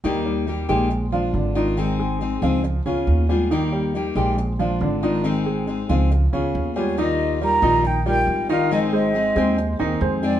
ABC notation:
X:1
M:4/4
L:1/8
Q:1/4=138
K:Eb
V:1 name="Flute"
z8 | z8 | z8 | z6 z _d |
e2 b2 g g2 f | e e4 z2 d |]
V:2 name="Grand piano"
[E,E] [G,G]2 [A,A]2 [F,F] [D,D] [E,E]- | [E,E] [A,A]2 [F,F]2 [_D,_D]2 [G,G] | [E,E] [G,G]2 [A,A]2 [F,F] [D,D] [E,E]- | [E,E] [A,A]2 [F,F]2 [_D,_D]2 [G,G] |
[E,Ee]2 [G,GB] [E,Ee]2 [G,GB]2 [E,Ee]- | [E,Ee] [A,Ac]2 [A,Ac]2 [E,Ee] [A,Ac]2 |]
V:3 name="Steel-string acoustic guitar"
[E,G,B,EG]2 [G,B,EG] [G,B,EG] z [A,DF]2 [A,DF] | [E,A,CEA]2 [A,CEA] [A,CEA] z [_CFA]2 [A,CFA] | [E,G,B,EG]2 [G,B,EG] [G,B,EG] z [A,DF]2 [A,DF] | [E,A,CEA]2 [A,CEA] [A,CEA] z [_CFA]2 [A,CFA] |
[E,G,EF]2 [E,G,EF] [G,EF] z [G,EF]2 [G,EF] | [E,A,CEA]2 [A,CEA] [A,CEA] z [CEA]2 [A,CEA] |]
V:4 name="Upright bass" clef=bass
E,,3 B,,,3 A,,,2- | A,,,3 _D,,2 D,, E,,2- | E,,3 B,,,3 A,,,2- | A,,,3 _D,,2 D,, E,,2- |
E,,3 B,,,3 A,,,2- | A,,,3 E,,2 E,, F,,2 |]